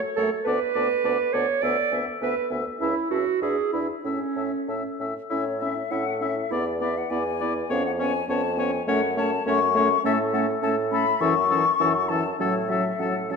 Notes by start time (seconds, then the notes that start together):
0.16 F#2 A3 A4 C#5 A5
0.44 D2 B3 B4 D5 A5
0.75 D2 B3 D5 A5
1.04 D2 B3 D5 A5
1.33 D2 B3 C#5 D5 A5
1.62 D2 B3 D5 E5 G#5
1.92 D2 B3 E5 G#5
2.21 D2 B3 B4 E5 G#5
2.50 D2 B3 E5 G#5
2.80 C#2 C#4 E4 E5 A5
3.10 C#2 C#4 F#4 E5 A5
3.41 E2 D4 G#4 E5 B5
3.73 E2 D4 E4 E5 B5
4.04 A2 C#4 E5 A5
4.36 A2 C#4 E5 A5
4.68 A2 C#4 E5 A5
4.99 A2 C#4 E5 A5
5.30 A2 C#4 E4 C#5 E5
5.60 C#4 E4 E5
5.91 A2 C#4 E4 E5 F#5
6.21 C#4 E4 E5
6.51 E2 B3 E4 D5
6.80 B3 E4 D5 E5
6.98 F#5
7.10 E2 B3 E4 D5 G#5
7.40 B3 E4 D5
7.69 F2 B3 C#4 C#5 F5
7.86 F#5
7.99 B3 C#4 C#5 G#5
8.28 F2 B3 C#4 C#5 A5
8.57 B3 C#4 C#5 G#5
8.87 F#2 A3 C#4 C#5 F#5
9.17 A3 C#4 C#5 A5
9.46 F#2 A3 C#4 C#5 C#6
9.75 A3 C#4 C#5
10.04 A2 A3 C#4 A4 E5
10.33 A3 C#4 A4 F#5
10.62 A2 A3 C#4 A4 A5
10.92 A3 C#4 A4 B5
11.20 F#2 E3 C#4 A4 C#6
11.50 E3 C#4 A4
11.79 F#2 E3 C#4 A4
12.09 E3 C#4 A4 A5
12.39 A2 F#3 C#4 A4 C#5
12.69 F#3 C#4 A4 E5
12.99 A2 F#3 C#4 A4 F#5
13.30 F#3 C#4 A4 C#5